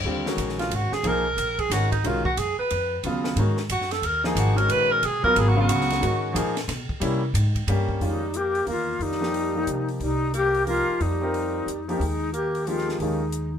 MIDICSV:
0, 0, Header, 1, 7, 480
1, 0, Start_track
1, 0, Tempo, 332042
1, 77, Time_signature, 3, 2, 24, 8
1, 19644, End_track
2, 0, Start_track
2, 0, Title_t, "Tenor saxophone"
2, 0, Program_c, 0, 66
2, 856, Note_on_c, 0, 65, 94
2, 1085, Note_on_c, 0, 66, 93
2, 1107, Note_off_c, 0, 65, 0
2, 1349, Note_on_c, 0, 68, 103
2, 1371, Note_off_c, 0, 66, 0
2, 1551, Note_on_c, 0, 70, 101
2, 1572, Note_off_c, 0, 68, 0
2, 2303, Note_on_c, 0, 68, 100
2, 2324, Note_off_c, 0, 70, 0
2, 2497, Note_on_c, 0, 66, 94
2, 2519, Note_off_c, 0, 68, 0
2, 2760, Note_off_c, 0, 66, 0
2, 2768, Note_on_c, 0, 63, 90
2, 2990, Note_on_c, 0, 65, 92
2, 3011, Note_off_c, 0, 63, 0
2, 3241, Note_off_c, 0, 65, 0
2, 3250, Note_on_c, 0, 66, 92
2, 3452, Note_on_c, 0, 68, 94
2, 3473, Note_off_c, 0, 66, 0
2, 3733, Note_off_c, 0, 68, 0
2, 3741, Note_on_c, 0, 71, 97
2, 4351, Note_off_c, 0, 71, 0
2, 5374, Note_on_c, 0, 66, 104
2, 5666, Note_on_c, 0, 69, 96
2, 5688, Note_off_c, 0, 66, 0
2, 5861, Note_on_c, 0, 70, 98
2, 5883, Note_off_c, 0, 69, 0
2, 6134, Note_off_c, 0, 70, 0
2, 6143, Note_on_c, 0, 63, 52
2, 6328, Note_on_c, 0, 66, 89
2, 6349, Note_off_c, 0, 63, 0
2, 6604, Note_on_c, 0, 70, 106
2, 6625, Note_off_c, 0, 66, 0
2, 6810, Note_on_c, 0, 71, 119
2, 6832, Note_off_c, 0, 70, 0
2, 7102, Note_on_c, 0, 70, 108
2, 7124, Note_off_c, 0, 71, 0
2, 7303, Note_on_c, 0, 68, 94
2, 7325, Note_off_c, 0, 70, 0
2, 7563, Note_off_c, 0, 68, 0
2, 7572, Note_on_c, 0, 70, 126
2, 7789, Note_on_c, 0, 68, 98
2, 7810, Note_off_c, 0, 70, 0
2, 7932, Note_on_c, 0, 66, 88
2, 7954, Note_off_c, 0, 68, 0
2, 8081, Note_off_c, 0, 66, 0
2, 8102, Note_on_c, 0, 66, 105
2, 9247, Note_off_c, 0, 66, 0
2, 11614, Note_on_c, 0, 55, 69
2, 12081, Note_on_c, 0, 58, 81
2, 12103, Note_off_c, 0, 55, 0
2, 12543, Note_off_c, 0, 58, 0
2, 12552, Note_on_c, 0, 58, 81
2, 13042, Note_on_c, 0, 55, 74
2, 13064, Note_off_c, 0, 58, 0
2, 14299, Note_off_c, 0, 55, 0
2, 14487, Note_on_c, 0, 55, 73
2, 14926, Note_off_c, 0, 55, 0
2, 14937, Note_on_c, 0, 58, 76
2, 15391, Note_off_c, 0, 58, 0
2, 15432, Note_on_c, 0, 58, 83
2, 15906, Note_on_c, 0, 55, 71
2, 15927, Note_off_c, 0, 58, 0
2, 17172, Note_off_c, 0, 55, 0
2, 17280, Note_on_c, 0, 53, 48
2, 17368, Note_on_c, 0, 56, 68
2, 17390, Note_off_c, 0, 53, 0
2, 17814, Note_off_c, 0, 56, 0
2, 17823, Note_on_c, 0, 58, 68
2, 18299, Note_on_c, 0, 56, 79
2, 18321, Note_off_c, 0, 58, 0
2, 18779, Note_off_c, 0, 56, 0
2, 18787, Note_on_c, 0, 56, 57
2, 19581, Note_off_c, 0, 56, 0
2, 19644, End_track
3, 0, Start_track
3, 0, Title_t, "Flute"
3, 0, Program_c, 1, 73
3, 11630, Note_on_c, 1, 63, 87
3, 12096, Note_on_c, 1, 67, 89
3, 12118, Note_off_c, 1, 63, 0
3, 12562, Note_off_c, 1, 67, 0
3, 12586, Note_on_c, 1, 65, 81
3, 13045, Note_on_c, 1, 63, 94
3, 13066, Note_off_c, 1, 65, 0
3, 14300, Note_off_c, 1, 63, 0
3, 14491, Note_on_c, 1, 63, 94
3, 14928, Note_off_c, 1, 63, 0
3, 14982, Note_on_c, 1, 67, 103
3, 15414, Note_off_c, 1, 67, 0
3, 15439, Note_on_c, 1, 65, 88
3, 15924, Note_on_c, 1, 63, 88
3, 15946, Note_off_c, 1, 65, 0
3, 17181, Note_off_c, 1, 63, 0
3, 17292, Note_on_c, 1, 61, 57
3, 17360, Note_on_c, 1, 63, 75
3, 17382, Note_off_c, 1, 61, 0
3, 17837, Note_off_c, 1, 63, 0
3, 17852, Note_on_c, 1, 67, 81
3, 18325, Note_on_c, 1, 65, 82
3, 18347, Note_off_c, 1, 67, 0
3, 18800, Note_off_c, 1, 65, 0
3, 18811, Note_on_c, 1, 63, 74
3, 19593, Note_off_c, 1, 63, 0
3, 19644, End_track
4, 0, Start_track
4, 0, Title_t, "Grand piano"
4, 0, Program_c, 2, 0
4, 64, Note_on_c, 2, 50, 66
4, 74, Note_on_c, 2, 55, 65
4, 90, Note_on_c, 2, 60, 63
4, 90, Note_on_c, 2, 65, 72
4, 342, Note_off_c, 2, 50, 0
4, 347, Note_off_c, 2, 55, 0
4, 355, Note_off_c, 2, 60, 0
4, 355, Note_off_c, 2, 65, 0
4, 381, Note_on_c, 2, 51, 67
4, 385, Note_on_c, 2, 56, 59
4, 398, Note_on_c, 2, 66, 75
4, 399, Note_on_c, 2, 61, 63
4, 1411, Note_off_c, 2, 51, 0
4, 1413, Note_off_c, 2, 56, 0
4, 1419, Note_off_c, 2, 66, 0
4, 1420, Note_off_c, 2, 61, 0
4, 1499, Note_on_c, 2, 53, 78
4, 1511, Note_on_c, 2, 58, 70
4, 1516, Note_on_c, 2, 63, 64
4, 1521, Note_on_c, 2, 68, 84
4, 1779, Note_off_c, 2, 53, 0
4, 1785, Note_off_c, 2, 58, 0
4, 1788, Note_off_c, 2, 63, 0
4, 1790, Note_off_c, 2, 68, 0
4, 2476, Note_on_c, 2, 51, 65
4, 2482, Note_on_c, 2, 56, 56
4, 2495, Note_on_c, 2, 61, 63
4, 2504, Note_on_c, 2, 66, 69
4, 2748, Note_off_c, 2, 51, 0
4, 2751, Note_off_c, 2, 56, 0
4, 2757, Note_off_c, 2, 61, 0
4, 2762, Note_off_c, 2, 66, 0
4, 2951, Note_on_c, 2, 51, 75
4, 2960, Note_on_c, 2, 56, 66
4, 2966, Note_on_c, 2, 61, 69
4, 2973, Note_on_c, 2, 66, 79
4, 3225, Note_off_c, 2, 51, 0
4, 3229, Note_off_c, 2, 56, 0
4, 3233, Note_off_c, 2, 61, 0
4, 3236, Note_off_c, 2, 66, 0
4, 4401, Note_on_c, 2, 49, 70
4, 4412, Note_on_c, 2, 54, 69
4, 4416, Note_on_c, 2, 59, 70
4, 4428, Note_on_c, 2, 65, 84
4, 4860, Note_off_c, 2, 49, 0
4, 4865, Note_off_c, 2, 54, 0
4, 4867, Note_off_c, 2, 59, 0
4, 4873, Note_off_c, 2, 65, 0
4, 4881, Note_on_c, 2, 51, 73
4, 4895, Note_on_c, 2, 56, 63
4, 4897, Note_on_c, 2, 61, 60
4, 4916, Note_on_c, 2, 66, 75
4, 5149, Note_off_c, 2, 51, 0
4, 5156, Note_off_c, 2, 56, 0
4, 5157, Note_off_c, 2, 61, 0
4, 5166, Note_off_c, 2, 66, 0
4, 6129, Note_on_c, 2, 53, 76
4, 6141, Note_on_c, 2, 58, 71
4, 6146, Note_on_c, 2, 63, 72
4, 6150, Note_on_c, 2, 68, 87
4, 6581, Note_off_c, 2, 53, 0
4, 6584, Note_on_c, 2, 51, 71
4, 6587, Note_off_c, 2, 58, 0
4, 6589, Note_off_c, 2, 63, 0
4, 6591, Note_off_c, 2, 68, 0
4, 6593, Note_on_c, 2, 56, 70
4, 6607, Note_on_c, 2, 61, 72
4, 6611, Note_on_c, 2, 66, 81
4, 7221, Note_off_c, 2, 51, 0
4, 7225, Note_off_c, 2, 56, 0
4, 7232, Note_off_c, 2, 61, 0
4, 7235, Note_off_c, 2, 66, 0
4, 7559, Note_on_c, 2, 54, 88
4, 7570, Note_on_c, 2, 59, 76
4, 7582, Note_on_c, 2, 65, 80
4, 7592, Note_on_c, 2, 70, 89
4, 8015, Note_off_c, 2, 54, 0
4, 8020, Note_off_c, 2, 59, 0
4, 8027, Note_off_c, 2, 65, 0
4, 8028, Note_on_c, 2, 49, 86
4, 8031, Note_off_c, 2, 70, 0
4, 8037, Note_on_c, 2, 54, 75
4, 8042, Note_on_c, 2, 59, 79
4, 8054, Note_on_c, 2, 77, 87
4, 8662, Note_off_c, 2, 49, 0
4, 8666, Note_off_c, 2, 54, 0
4, 8669, Note_off_c, 2, 59, 0
4, 8675, Note_off_c, 2, 77, 0
4, 8676, Note_on_c, 2, 51, 65
4, 8685, Note_on_c, 2, 56, 69
4, 8700, Note_on_c, 2, 61, 65
4, 8705, Note_on_c, 2, 66, 76
4, 9151, Note_on_c, 2, 53, 82
4, 9154, Note_off_c, 2, 51, 0
4, 9159, Note_off_c, 2, 56, 0
4, 9161, Note_on_c, 2, 58, 74
4, 9167, Note_off_c, 2, 61, 0
4, 9169, Note_off_c, 2, 66, 0
4, 9179, Note_on_c, 2, 63, 74
4, 9186, Note_on_c, 2, 68, 90
4, 9441, Note_off_c, 2, 53, 0
4, 9446, Note_off_c, 2, 58, 0
4, 9455, Note_off_c, 2, 63, 0
4, 9459, Note_off_c, 2, 68, 0
4, 10122, Note_on_c, 2, 55, 76
4, 10137, Note_on_c, 2, 58, 69
4, 10141, Note_on_c, 2, 61, 74
4, 10154, Note_on_c, 2, 64, 82
4, 10407, Note_off_c, 2, 55, 0
4, 10414, Note_off_c, 2, 58, 0
4, 10416, Note_off_c, 2, 61, 0
4, 10422, Note_off_c, 2, 64, 0
4, 11106, Note_on_c, 2, 55, 68
4, 11107, Note_on_c, 2, 58, 67
4, 11116, Note_on_c, 2, 61, 67
4, 11118, Note_on_c, 2, 67, 84
4, 11566, Note_off_c, 2, 61, 0
4, 11573, Note_on_c, 2, 51, 55
4, 11577, Note_on_c, 2, 56, 51
4, 11586, Note_off_c, 2, 55, 0
4, 11587, Note_off_c, 2, 58, 0
4, 11588, Note_on_c, 2, 61, 51
4, 11592, Note_off_c, 2, 67, 0
4, 11596, Note_on_c, 2, 65, 66
4, 11852, Note_off_c, 2, 51, 0
4, 11854, Note_off_c, 2, 56, 0
4, 11860, Note_off_c, 2, 61, 0
4, 11863, Note_off_c, 2, 65, 0
4, 12521, Note_on_c, 2, 51, 51
4, 12525, Note_on_c, 2, 58, 44
4, 12535, Note_on_c, 2, 63, 52
4, 12549, Note_on_c, 2, 65, 60
4, 13257, Note_off_c, 2, 51, 0
4, 13259, Note_off_c, 2, 58, 0
4, 13264, Note_off_c, 2, 63, 0
4, 13271, Note_off_c, 2, 65, 0
4, 13304, Note_on_c, 2, 53, 57
4, 13313, Note_on_c, 2, 58, 58
4, 13321, Note_on_c, 2, 63, 55
4, 13327, Note_on_c, 2, 67, 65
4, 13768, Note_off_c, 2, 53, 0
4, 13772, Note_off_c, 2, 58, 0
4, 13776, Note_off_c, 2, 63, 0
4, 13779, Note_off_c, 2, 67, 0
4, 13797, Note_on_c, 2, 53, 59
4, 13808, Note_on_c, 2, 58, 52
4, 13821, Note_on_c, 2, 63, 53
4, 13825, Note_on_c, 2, 67, 61
4, 14427, Note_off_c, 2, 53, 0
4, 14433, Note_off_c, 2, 58, 0
4, 14440, Note_off_c, 2, 63, 0
4, 14442, Note_off_c, 2, 67, 0
4, 15407, Note_on_c, 2, 53, 53
4, 15413, Note_on_c, 2, 58, 50
4, 15426, Note_on_c, 2, 63, 49
4, 15427, Note_on_c, 2, 67, 60
4, 16142, Note_off_c, 2, 53, 0
4, 16145, Note_off_c, 2, 58, 0
4, 16151, Note_off_c, 2, 63, 0
4, 16151, Note_off_c, 2, 67, 0
4, 16209, Note_on_c, 2, 67, 61
4, 16218, Note_on_c, 2, 60, 58
4, 16229, Note_on_c, 2, 65, 58
4, 16236, Note_on_c, 2, 70, 70
4, 16835, Note_off_c, 2, 67, 0
4, 16839, Note_off_c, 2, 60, 0
4, 16845, Note_off_c, 2, 65, 0
4, 16848, Note_off_c, 2, 70, 0
4, 17178, Note_on_c, 2, 53, 70
4, 17186, Note_on_c, 2, 58, 64
4, 17194, Note_on_c, 2, 63, 64
4, 17207, Note_on_c, 2, 67, 80
4, 17337, Note_off_c, 2, 53, 0
4, 17341, Note_off_c, 2, 58, 0
4, 17345, Note_off_c, 2, 63, 0
4, 17351, Note_off_c, 2, 67, 0
4, 18313, Note_on_c, 2, 53, 61
4, 18325, Note_on_c, 2, 58, 54
4, 18334, Note_on_c, 2, 63, 58
4, 18340, Note_on_c, 2, 67, 66
4, 18802, Note_on_c, 2, 51, 56
4, 18806, Note_on_c, 2, 56, 53
4, 18820, Note_on_c, 2, 61, 51
4, 18826, Note_on_c, 2, 65, 66
4, 19035, Note_off_c, 2, 53, 0
4, 19041, Note_off_c, 2, 58, 0
4, 19046, Note_off_c, 2, 63, 0
4, 19049, Note_off_c, 2, 67, 0
4, 19070, Note_off_c, 2, 51, 0
4, 19072, Note_off_c, 2, 56, 0
4, 19079, Note_off_c, 2, 61, 0
4, 19082, Note_off_c, 2, 65, 0
4, 19644, End_track
5, 0, Start_track
5, 0, Title_t, "Upright bass"
5, 0, Program_c, 3, 32
5, 56, Note_on_c, 3, 39, 84
5, 523, Note_off_c, 3, 39, 0
5, 532, Note_on_c, 3, 34, 97
5, 1006, Note_off_c, 3, 34, 0
5, 1015, Note_on_c, 3, 32, 92
5, 1306, Note_off_c, 3, 32, 0
5, 1495, Note_on_c, 3, 35, 91
5, 1971, Note_off_c, 3, 35, 0
5, 1977, Note_on_c, 3, 34, 88
5, 2446, Note_off_c, 3, 34, 0
5, 2454, Note_on_c, 3, 32, 93
5, 2930, Note_off_c, 3, 32, 0
5, 2953, Note_on_c, 3, 35, 85
5, 3420, Note_off_c, 3, 35, 0
5, 3427, Note_on_c, 3, 42, 94
5, 3711, Note_off_c, 3, 42, 0
5, 3918, Note_on_c, 3, 41, 103
5, 4382, Note_off_c, 3, 41, 0
5, 4388, Note_on_c, 3, 39, 80
5, 4846, Note_off_c, 3, 39, 0
5, 4855, Note_on_c, 3, 44, 97
5, 5329, Note_off_c, 3, 44, 0
5, 5343, Note_on_c, 3, 42, 93
5, 5799, Note_off_c, 3, 42, 0
5, 5808, Note_on_c, 3, 39, 87
5, 6285, Note_off_c, 3, 39, 0
5, 6292, Note_on_c, 3, 32, 101
5, 6767, Note_off_c, 3, 32, 0
5, 6776, Note_on_c, 3, 34, 92
5, 7249, Note_off_c, 3, 34, 0
5, 7261, Note_on_c, 3, 35, 86
5, 7546, Note_off_c, 3, 35, 0
5, 7748, Note_on_c, 3, 32, 102
5, 8214, Note_off_c, 3, 32, 0
5, 8225, Note_on_c, 3, 37, 96
5, 8692, Note_off_c, 3, 37, 0
5, 8709, Note_on_c, 3, 44, 93
5, 9167, Note_off_c, 3, 44, 0
5, 9176, Note_on_c, 3, 46, 95
5, 9647, Note_off_c, 3, 46, 0
5, 9654, Note_on_c, 3, 47, 98
5, 9941, Note_off_c, 3, 47, 0
5, 10134, Note_on_c, 3, 48, 94
5, 10599, Note_off_c, 3, 48, 0
5, 10608, Note_on_c, 3, 44, 102
5, 11083, Note_off_c, 3, 44, 0
5, 11090, Note_on_c, 3, 43, 96
5, 11560, Note_off_c, 3, 43, 0
5, 11569, Note_on_c, 3, 41, 77
5, 12481, Note_off_c, 3, 41, 0
5, 12527, Note_on_c, 3, 40, 75
5, 12984, Note_off_c, 3, 40, 0
5, 13001, Note_on_c, 3, 41, 74
5, 13919, Note_off_c, 3, 41, 0
5, 13974, Note_on_c, 3, 48, 73
5, 14428, Note_off_c, 3, 48, 0
5, 14452, Note_on_c, 3, 36, 82
5, 15667, Note_off_c, 3, 36, 0
5, 15906, Note_on_c, 3, 41, 86
5, 16812, Note_off_c, 3, 41, 0
5, 16857, Note_on_c, 3, 41, 77
5, 17311, Note_off_c, 3, 41, 0
5, 17341, Note_on_c, 3, 39, 81
5, 18730, Note_off_c, 3, 39, 0
5, 18774, Note_on_c, 3, 39, 85
5, 19644, Note_off_c, 3, 39, 0
5, 19644, End_track
6, 0, Start_track
6, 0, Title_t, "Muted upright bass strokes"
6, 1326, Note_on_c, 9, 29, 39
6, 1470, Note_off_c, 9, 29, 0
6, 3738, Note_on_c, 9, 29, 43
6, 3883, Note_off_c, 9, 29, 0
6, 7569, Note_on_c, 9, 29, 37
6, 7714, Note_off_c, 9, 29, 0
6, 9958, Note_on_c, 9, 29, 42
6, 10103, Note_off_c, 9, 29, 0
6, 15721, Note_on_c, 9, 29, 39
6, 15866, Note_off_c, 9, 29, 0
6, 19644, End_track
7, 0, Start_track
7, 0, Title_t, "Drums"
7, 381, Note_on_c, 9, 38, 69
7, 525, Note_off_c, 9, 38, 0
7, 550, Note_on_c, 9, 44, 56
7, 550, Note_on_c, 9, 51, 71
7, 694, Note_off_c, 9, 44, 0
7, 694, Note_off_c, 9, 51, 0
7, 709, Note_on_c, 9, 38, 30
7, 854, Note_off_c, 9, 38, 0
7, 856, Note_on_c, 9, 51, 44
7, 875, Note_on_c, 9, 38, 45
7, 1001, Note_off_c, 9, 51, 0
7, 1019, Note_off_c, 9, 38, 0
7, 1032, Note_on_c, 9, 51, 73
7, 1176, Note_off_c, 9, 51, 0
7, 1333, Note_on_c, 9, 38, 44
7, 1478, Note_off_c, 9, 38, 0
7, 1502, Note_on_c, 9, 51, 67
7, 1646, Note_off_c, 9, 51, 0
7, 1993, Note_on_c, 9, 44, 61
7, 1993, Note_on_c, 9, 51, 67
7, 2138, Note_off_c, 9, 44, 0
7, 2138, Note_off_c, 9, 51, 0
7, 2293, Note_on_c, 9, 51, 49
7, 2294, Note_on_c, 9, 36, 49
7, 2438, Note_off_c, 9, 51, 0
7, 2439, Note_off_c, 9, 36, 0
7, 2478, Note_on_c, 9, 44, 59
7, 2478, Note_on_c, 9, 51, 84
7, 2480, Note_on_c, 9, 38, 41
7, 2623, Note_off_c, 9, 44, 0
7, 2623, Note_off_c, 9, 51, 0
7, 2624, Note_off_c, 9, 38, 0
7, 2777, Note_on_c, 9, 36, 57
7, 2780, Note_on_c, 9, 51, 55
7, 2921, Note_off_c, 9, 36, 0
7, 2924, Note_off_c, 9, 51, 0
7, 2955, Note_on_c, 9, 51, 67
7, 3100, Note_off_c, 9, 51, 0
7, 3255, Note_on_c, 9, 36, 70
7, 3400, Note_off_c, 9, 36, 0
7, 3431, Note_on_c, 9, 44, 57
7, 3431, Note_on_c, 9, 51, 74
7, 3576, Note_off_c, 9, 44, 0
7, 3576, Note_off_c, 9, 51, 0
7, 3910, Note_on_c, 9, 51, 72
7, 4055, Note_off_c, 9, 51, 0
7, 4388, Note_on_c, 9, 51, 67
7, 4532, Note_off_c, 9, 51, 0
7, 4689, Note_on_c, 9, 38, 65
7, 4834, Note_off_c, 9, 38, 0
7, 4867, Note_on_c, 9, 51, 66
7, 5011, Note_off_c, 9, 51, 0
7, 5160, Note_on_c, 9, 38, 46
7, 5305, Note_off_c, 9, 38, 0
7, 5342, Note_on_c, 9, 44, 66
7, 5342, Note_on_c, 9, 51, 85
7, 5486, Note_off_c, 9, 44, 0
7, 5486, Note_off_c, 9, 51, 0
7, 5515, Note_on_c, 9, 38, 31
7, 5656, Note_on_c, 9, 51, 51
7, 5659, Note_off_c, 9, 38, 0
7, 5673, Note_on_c, 9, 38, 46
7, 5800, Note_off_c, 9, 51, 0
7, 5817, Note_off_c, 9, 38, 0
7, 5827, Note_on_c, 9, 51, 69
7, 5972, Note_off_c, 9, 51, 0
7, 6133, Note_on_c, 9, 38, 59
7, 6278, Note_off_c, 9, 38, 0
7, 6311, Note_on_c, 9, 44, 61
7, 6311, Note_on_c, 9, 51, 79
7, 6456, Note_off_c, 9, 44, 0
7, 6456, Note_off_c, 9, 51, 0
7, 6620, Note_on_c, 9, 51, 55
7, 6764, Note_off_c, 9, 51, 0
7, 6787, Note_on_c, 9, 51, 74
7, 6932, Note_off_c, 9, 51, 0
7, 7268, Note_on_c, 9, 51, 71
7, 7413, Note_off_c, 9, 51, 0
7, 7573, Note_on_c, 9, 36, 66
7, 7718, Note_off_c, 9, 36, 0
7, 7752, Note_on_c, 9, 51, 72
7, 7896, Note_off_c, 9, 51, 0
7, 8226, Note_on_c, 9, 44, 66
7, 8226, Note_on_c, 9, 51, 93
7, 8370, Note_off_c, 9, 44, 0
7, 8370, Note_off_c, 9, 51, 0
7, 8398, Note_on_c, 9, 38, 36
7, 8535, Note_on_c, 9, 51, 53
7, 8543, Note_off_c, 9, 38, 0
7, 8557, Note_on_c, 9, 38, 50
7, 8680, Note_off_c, 9, 51, 0
7, 8701, Note_off_c, 9, 38, 0
7, 8714, Note_on_c, 9, 51, 70
7, 8859, Note_off_c, 9, 51, 0
7, 9193, Note_on_c, 9, 44, 65
7, 9193, Note_on_c, 9, 51, 81
7, 9337, Note_off_c, 9, 44, 0
7, 9337, Note_off_c, 9, 51, 0
7, 9494, Note_on_c, 9, 51, 55
7, 9496, Note_on_c, 9, 38, 57
7, 9639, Note_off_c, 9, 51, 0
7, 9640, Note_off_c, 9, 38, 0
7, 9667, Note_on_c, 9, 51, 80
7, 9668, Note_on_c, 9, 38, 47
7, 9811, Note_off_c, 9, 51, 0
7, 9813, Note_off_c, 9, 38, 0
7, 9965, Note_on_c, 9, 36, 60
7, 10109, Note_off_c, 9, 36, 0
7, 10140, Note_on_c, 9, 51, 76
7, 10285, Note_off_c, 9, 51, 0
7, 10623, Note_on_c, 9, 44, 70
7, 10623, Note_on_c, 9, 51, 86
7, 10767, Note_off_c, 9, 44, 0
7, 10767, Note_off_c, 9, 51, 0
7, 10920, Note_on_c, 9, 36, 50
7, 10923, Note_on_c, 9, 51, 52
7, 11065, Note_off_c, 9, 36, 0
7, 11068, Note_off_c, 9, 51, 0
7, 11099, Note_on_c, 9, 51, 79
7, 11244, Note_off_c, 9, 51, 0
7, 11399, Note_on_c, 9, 36, 53
7, 11544, Note_off_c, 9, 36, 0
7, 11584, Note_on_c, 9, 46, 41
7, 11728, Note_off_c, 9, 46, 0
7, 12054, Note_on_c, 9, 42, 45
7, 12198, Note_off_c, 9, 42, 0
7, 12359, Note_on_c, 9, 46, 34
7, 12504, Note_off_c, 9, 46, 0
7, 12531, Note_on_c, 9, 46, 45
7, 12676, Note_off_c, 9, 46, 0
7, 13020, Note_on_c, 9, 46, 40
7, 13164, Note_off_c, 9, 46, 0
7, 13181, Note_on_c, 9, 38, 28
7, 13326, Note_off_c, 9, 38, 0
7, 13341, Note_on_c, 9, 38, 44
7, 13486, Note_off_c, 9, 38, 0
7, 13505, Note_on_c, 9, 46, 46
7, 13649, Note_off_c, 9, 46, 0
7, 13982, Note_on_c, 9, 42, 49
7, 14127, Note_off_c, 9, 42, 0
7, 14291, Note_on_c, 9, 46, 34
7, 14436, Note_off_c, 9, 46, 0
7, 14464, Note_on_c, 9, 46, 40
7, 14609, Note_off_c, 9, 46, 0
7, 14946, Note_on_c, 9, 42, 47
7, 15090, Note_off_c, 9, 42, 0
7, 15246, Note_on_c, 9, 46, 32
7, 15391, Note_off_c, 9, 46, 0
7, 15424, Note_on_c, 9, 46, 44
7, 15569, Note_off_c, 9, 46, 0
7, 15912, Note_on_c, 9, 46, 40
7, 16057, Note_off_c, 9, 46, 0
7, 16396, Note_on_c, 9, 46, 41
7, 16540, Note_off_c, 9, 46, 0
7, 16888, Note_on_c, 9, 42, 58
7, 17032, Note_off_c, 9, 42, 0
7, 17189, Note_on_c, 9, 46, 36
7, 17333, Note_off_c, 9, 46, 0
7, 17365, Note_on_c, 9, 46, 44
7, 17509, Note_off_c, 9, 46, 0
7, 17835, Note_on_c, 9, 42, 48
7, 17980, Note_off_c, 9, 42, 0
7, 18140, Note_on_c, 9, 46, 38
7, 18285, Note_off_c, 9, 46, 0
7, 18316, Note_on_c, 9, 46, 46
7, 18461, Note_off_c, 9, 46, 0
7, 18476, Note_on_c, 9, 38, 28
7, 18620, Note_off_c, 9, 38, 0
7, 18631, Note_on_c, 9, 38, 39
7, 18775, Note_off_c, 9, 38, 0
7, 18794, Note_on_c, 9, 46, 45
7, 18939, Note_off_c, 9, 46, 0
7, 19262, Note_on_c, 9, 42, 52
7, 19406, Note_off_c, 9, 42, 0
7, 19644, End_track
0, 0, End_of_file